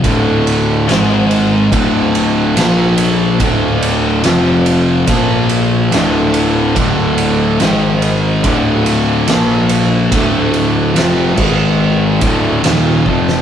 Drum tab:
CC |----------------|----------------|----------------|------x---------|
RD |x-x-x-x-x-x-x-x-|x-x-x-x-x-x-x-x-|x-x-x-x-x-x-x-x-|x-x-x-----x-x---|
SD |----o-------o---|----o-------o---|----o-------o---|----o-------o--o|
BD |o-------o-------|o-------o-------|o-------o-------|o-----o---o---o-|